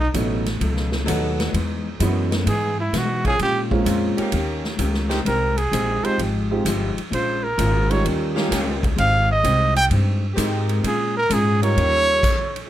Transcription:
Already playing: B1
0.14 A1 B2 F#3 A3 B3 C#4 D#4 F#4, kick, hi-hat pedal, ride
0.46 snare, ride
0.61 C#2 B2 F#3 A3 D#4, kick, ride
0.76 snare
0.92 snare
1.06 D#2 B2 F#3 B3 D#4 A4, kick, hi-hat pedal, ride
1.10 A3 D#4
1.40 snare, ride
1.53 E2 E3 G#3 B3 D#4, kick, ride
1.99 F#2 E3 G#3 B3 D#4 E4 F#4 G#4, kick, hi-hat pedal, ride
2.32 snare, ride
2.46 G#2 E3 G#3 B3 D#4 G#4, kick, ride
2.80 E4
2.93 B2 E3 G#3 B3, kick, snare, hi-hat pedal, ride
2.97 D#4 F#4
3.24 F3 A#3 C#4 G#4, kick, ride
3.39 A#2 G#3 C#4 G4, kick, ride
3.43 F4
3.71 G#3 A#3 C4 C#4 F4, kick
3.85 F2 A#2 G#3 C#4 F4, kick, hi-hat pedal, ride
4.17 D#3 A#3 C#4 G4, muted upright bass stroke, ride
4.32 D#2 D#3 A#3 C#4, kick, ride
4.37 G4
4.64 snare
4.78 C#2 D#3 A#3 C#4 G4, kick, hi-hat pedal, ride
4.94 snare
5.09 D#3 G#3 C4 G4, snare, ride
5.25 C2 G#3 C4 D#4 G4 A#4, kick, ride
5.57 G#4, ride
5.72 A#1 G#3 C4 D#4 G4, kick, hi-hat pedal, ride
6.03 G#3 C4 D#4 F4 G4 C5, muted upright bass stroke, ride
6.18 G#1 F3 G#3 D#4, kick, ride
6.23 G4
6.51 G#3 C4 D#4 F4 G4
6.65 G1 F3 G#3 D#4, kick, hi-hat pedal, ride
6.69 G4
6.96 muted upright bass stroke, ride
7.11 A#1 A#2 G#3 C#4 F4 C5, kick, ride
7.44 A#4
7.58 G#1 A#2 G#3 C#4 F4, kick, hi-hat pedal, ride
7.91 G3 C#4 D#4 F4 A#4 C#5, ride
8.04 D#2 D#3 A#3 C#4 G4, kick, ride
8.34 D#3 G3 A#3 C#4 F4 G4, snare
8.38 D#4 A#4
8.50 C#2 D#3 A#3 C#4 G4, kick, snare, hi-hat pedal, ride
8.83 kick, ride
8.96 G#1 G#3 C4 D#4 F5, kick, ride
9.00 G4
9.31 D#5
9.43 C2 G#3 C4 D#4 G4, kick, hi-hat pedal, ride
9.76 G5, ride
9.90 G2 G#3 C4 D#4 G4, kick, ride
10.34 G#2 D#3 G#3 C4 D#4 G4 A#4, kick, hi-hat pedal, ride
10.38 C4 D#4 G4
10.69 ride
10.83 A#2 G#3 C#4 F4 G#4, kick, ride
11.17 A#4
11.30 G#2 A#2 G#3 C#4 F4 G#4, kick, hi-hat pedal, ride
11.62 G3 C#4 D#4 F4 A#4 C#5, ride
11.77 D#2 D#3 A#3 C#4, kick, ride
11.81 G4
12.23 kick, hi-hat pedal, crash, ride
12.56 ride

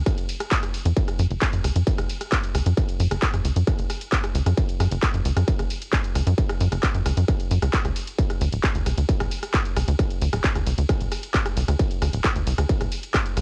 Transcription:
0.06 kick, cross-stick, closed hi-hat, ride
0.18 closed hi-hat, ride
0.29 open hi-hat, ride
0.40 cross-stick, closed hi-hat, ride
0.52 kick, clap, closed hi-hat, ride
0.63 cross-stick, closed hi-hat, ride
0.74 open hi-hat, ride
0.85 F2, closed hi-hat, ride
0.97 kick, closed hi-hat, ride
1.08 cross-stick, closed hi-hat, ride
1.19 F#2, open hi-hat, ride
1.31 F#1, closed hi-hat, ride
1.42 kick, cross-stick, clap, closed hi-hat, ride
1.53 F#2, closed hi-hat, ride
1.64 C#2, cross-stick, open hi-hat, ride
1.76 F#2, closed hi-hat, ride
1.87 kick, closed hi-hat, ride
1.98 F#1, cross-stick, closed hi-hat, ride
2.09 open hi-hat, ride
2.21 cross-stick, closed hi-hat, ride
2.32 kick, clap, closed hi-hat, ride
2.43 closed hi-hat, ride
2.55 C#2, cross-stick, open hi-hat, ride
2.66 F#2, closed hi-hat, ride
2.77 kick, cross-stick, closed hi-hat, ride
2.88 closed hi-hat, ride
3.00 F#2, open hi-hat, ride
3.11 F#1, cross-stick, closed hi-hat, ride
3.22 kick, clap, closed hi-hat, ride
3.34 F#2, cross-stick, closed hi-hat, ride
3.45 C#2, open hi-hat, ride
3.56 F#2, closed hi-hat, ride
3.67 kick, cross-stick, closed hi-hat, ride
3.79 F#1, closed hi-hat, ride
3.90 cross-stick, open hi-hat, ride
4.01 closed hi-hat, ride
4.12 kick, clap, closed hi-hat, ride
4.24 cross-stick, closed hi-hat, ride
4.35 C#2, open hi-hat, ride
4.46 F#2, cross-stick, closed hi-hat, ride
4.58 kick, closed hi-hat, ride
4.69 closed hi-hat, ride
4.80 F#2, cross-stick, open hi-hat, ride
4.91 F#1, closed hi-hat, ride
5.03 kick, cross-stick, clap, closed hi-hat, ride
5.14 F#2, closed hi-hat, ride
5.25 C#2, open hi-hat, ride
5.37 F#2, cross-stick, closed hi-hat, ride
5.48 kick, closed hi-hat, ride
5.59 F#1, cross-stick, closed hi-hat, ride
5.70 open hi-hat, ride
5.82 closed hi-hat, ride
5.93 kick, cross-stick, clap, closed hi-hat, ride
6.04 closed hi-hat, ride
6.15 C#2, cross-stick, open hi-hat, ride
6.27 F#2, closed hi-hat, ride
6.38 kick, closed hi-hat, ride
6.49 cross-stick, closed hi-hat, ride
6.61 F#2, open hi-hat, ride
6.72 F#1, cross-stick, closed hi-hat, ride
6.83 kick, clap, closed hi-hat, ride
6.94 F#2, closed hi-hat, ride
7.06 C#2, cross-stick, open hi-hat, ride
7.17 F#2, closed hi-hat, ride
7.28 kick, cross-stick, closed hi-hat, ride
7.40 closed hi-hat, ride
7.51 F#2, open hi-hat, ride
7.62 C#2, cross-stick, closed hi-hat, ride
7.73 kick, clap, closed hi-hat, ride
7.85 C#2, cross-stick, closed hi-hat, ride
7.96 open hi-hat, ride
8.07 closed hi-hat, ride
8.18 kick, closed hi-hat, ride
8.30 cross-stick, closed hi-hat, ride
8.41 D2, open hi-hat, ride
8.52 D1, closed hi-hat, ride
8.64 kick, cross-stick, clap, closed hi-hat, ride
8.75 D2, closed hi-hat, ride
8.86 C2, cross-stick, open hi-hat, ride
8.97 D2, closed hi-hat, ride
9.09 kick, closed hi-hat, ride
9.20 D1, cross-stick, closed hi-hat, ride
9.31 open hi-hat, ride
9.43 cross-stick, closed hi-hat, ride
9.54 kick, clap, closed hi-hat, ride
9.65 closed hi-hat, ride
9.76 C2, cross-stick, open hi-hat, ride
9.88 D2, closed hi-hat, ride
9.99 kick, cross-stick, closed hi-hat, ride
10.10 closed hi-hat, ride
10.21 D2, open hi-hat, ride
10.33 D1, cross-stick, closed hi-hat, ride
10.44 kick, clap, closed hi-hat, ride
10.55 D2, cross-stick, closed hi-hat, ride
10.66 C2, open hi-hat, ride
10.78 D2, closed hi-hat, ride
10.89 kick, cross-stick, closed hi-hat, ride
11.01 D1, closed hi-hat, ride
11.12 cross-stick, open hi-hat, ride
11.23 closed hi-hat, ride
11.34 kick, clap, closed hi-hat, ride
11.46 cross-stick, closed hi-hat, ride
11.57 C2, open hi-hat, ride
11.68 D2, cross-stick, closed hi-hat, ride
11.79 kick, closed hi-hat, ride
11.91 closed hi-hat, ride
12.02 D2, cross-stick, open hi-hat, ride
12.13 D1, closed hi-hat, ride
12.24 kick, cross-stick, clap, closed hi-hat, ride
12.36 D2, closed hi-hat, ride
12.47 C2, open hi-hat, ride
12.58 D2, cross-stick, closed hi-hat, ride
12.70 kick, closed hi-hat, ride
12.81 D1, cross-stick, closed hi-hat, ride
12.92 open hi-hat, ride
13.03 closed hi-hat, ride
13.15 kick, cross-stick, clap, closed hi-hat, ride
13.26 closed hi-hat, ride
13.37 C2, cross-stick, open hi-hat, ride

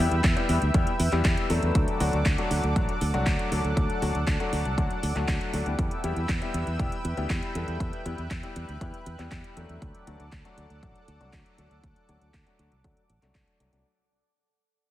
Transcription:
Already playing: B4 E5 G5 E6
0.00 G3 B3 E4 G4
0.11 E2, closed hi-hat
0.24 E2, kick, clap, closed hi-hat
0.37 G3 B3 E4 G4, closed hi-hat
0.49 E2, open hi-hat
0.62 D2, closed hi-hat
0.74 E2 G3 B3 E4 G4, kick, closed hi-hat
0.87 closed hi-hat
1.00 E2, open hi-hat
1.12 E2 G3 B3 E4 G4, clap, closed hi-hat
1.25 E2, kick, clap, closed hi-hat
1.37 closed hi-hat
1.50 E2 F#3 A3 D4 A4, open hi-hat
1.63 E2, closed hi-hat
1.75 D2 A4 D5 F#5 D6, kick, closed hi-hat
1.88 closed hi-hat
2.00 D2 F#3 A3 D4 F#4, open hi-hat
2.13 D2, closed hi-hat
2.26 D2, kick, clap, closed hi-hat
2.38 F#3 A3 D4 F#4, closed hi-hat
2.51 D2, open hi-hat
2.63 D2, closed hi-hat
2.76 A1 F#3 A3 D4 F#4, kick, closed hi-hat
2.89 closed hi-hat
3.01 D2, open hi-hat
3.14 C2 F#3 A3 D4 F#4, closed hi-hat
3.26 D2, kick, clap, closed hi-hat
3.39 closed hi-hat
3.52 D2 F#3 A3 D4 A4, open hi-hat
3.64 D2, closed hi-hat
3.77 D2, kick, closed hi-hat
3.90 closed hi-hat
4.02 D2 F#3 A3 D4 F#4, open hi-hat
4.15 D2, closed hi-hat
4.27 D2, kick, clap, closed hi-hat
4.40 F#3 A3 D4 F#4, closed hi-hat
4.53 D2, open hi-hat
4.65 C2, closed hi-hat
4.78 D2 F#3 A3 D4 F#4, kick, closed hi-hat
4.91 closed hi-hat
5.03 D2, open hi-hat
5.16 D2 F#3 A3 D4 F#4, clap, closed hi-hat
5.28 D2, kick, clap, closed hi-hat
5.41 closed hi-hat
5.53 D2 F#3 A3 D4 F#4, open hi-hat
5.66 D2 G3 B3 E4 G4, closed hi-hat
5.79 E2 B4 E5 G5 E6, kick, closed hi-hat
5.91 closed hi-hat
6.04 E2 G3 B3 E4 G4, closed hi-hat
6.16 E2, closed hi-hat
6.29 E2, kick, clap, closed hi-hat
6.42 G3 B3 E4 G4, closed hi-hat
6.54 E2, closed hi-hat
6.67 E2, closed hi-hat
6.79 E1 G3 B3 E4 G4, kick, closed hi-hat
6.92 closed hi-hat
7.05 E2, closed hi-hat
7.17 D2 G3 B3 E4 G4, closed hi-hat
7.30 E2, kick, clap, closed hi-hat
7.43 closed hi-hat
7.55 E2 G3 B3 E4 A4, closed hi-hat
7.68 E2, closed hi-hat
7.80 E2 F#6, kick, closed hi-hat
7.93 closed hi-hat
8.06 E2 G3 B3 E4 G4, closed hi-hat
8.18 E2, closed hi-hat
8.31 E2, kick, clap, closed hi-hat
8.43 G3 B3 E4 G4, closed hi-hat
8.56 E2, closed hi-hat
8.69 D2, closed hi-hat
8.81 E2 G3 B3 E4 G4, kick, closed hi-hat
8.94 closed hi-hat
9.06 E2, closed hi-hat
9.19 E2 G3 B3 E4 G4, clap, closed hi-hat
9.32 E2, kick, clap, closed hi-hat
9.44 closed hi-hat
9.57 E2 F#3 A3 D4 A4, closed hi-hat
9.69 E2, closed hi-hat
9.82 D2 A4 D5 F#5 D6, kick, closed hi-hat
9.95 closed hi-hat
10.07 D2 F#3 A3 D4 F#4, closed hi-hat
10.20 D2, closed hi-hat
10.32 D2, kick, clap, closed hi-hat
10.45 F#3 A3 D4 F#4, closed hi-hat
10.57 D2, closed hi-hat
10.70 D2, closed hi-hat
10.83 F#3 A3 D4 F#4, kick, closed hi-hat
10.96 closed hi-hat
11.08 D2, closed hi-hat
11.20 C2 F#3 A3 D4 F#4, closed hi-hat
11.33 D2, kick, clap, closed hi-hat
11.46 closed hi-hat
11.58 D2 F#3 A3 D4 A4, closed hi-hat
11.71 D2, closed hi-hat
11.84 D2, kick, closed hi-hat
11.96 closed hi-hat
12.09 D2 F#3 A3 D4 F#4, closed hi-hat
12.21 D2, closed hi-hat
12.34 D2, kick, clap, closed hi-hat
12.47 F#3 A3 D4 F#4, closed hi-hat
12.59 D2, closed hi-hat
12.72 C2, closed hi-hat
12.84 D2 F#3 A3 D4 F#4, kick, closed hi-hat
12.97 closed hi-hat
13.10 A1, closed hi-hat
13.22 C2 F#3 A3 D4 F#4, clap, closed hi-hat
13.35 C2, kick, clap, closed hi-hat
13.48 closed hi-hat
13.60 C2 F#3 A3 D4 F#4, closed hi-hat
13.73 C2 F#3 A3 D4 F#4, closed hi-hat

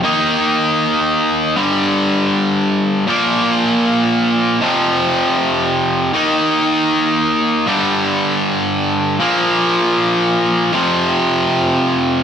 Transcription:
0.03 D#3 A#3 D#4
1.56 G2 D3 G3
3.07 A#2 F3 A#3
4.61 F2 C3 F3
6.13 D#3 A#3 D#4
7.67 G2 D3 G3
9.19 A#2 F3 A#3
10.72 F2 C3 F3

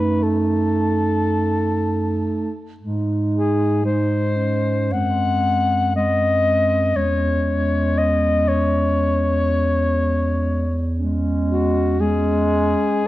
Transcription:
Already playing: F#2 A3 D#4 B4
0.23 A4
2.80 G#2 G#3 D#4
3.34 G#4
3.84 G#3 D#4 C5
4.36 C#4
4.90 F#2 G#3 C4 F#5
5.94 G#3 C4 D#5
6.95 E2 G#3 C#4 C#5
7.98 D#5
8.49 C#5
10.98 G#3 C#4
11.50 F#4
12.00 G#3 C#4 G#4

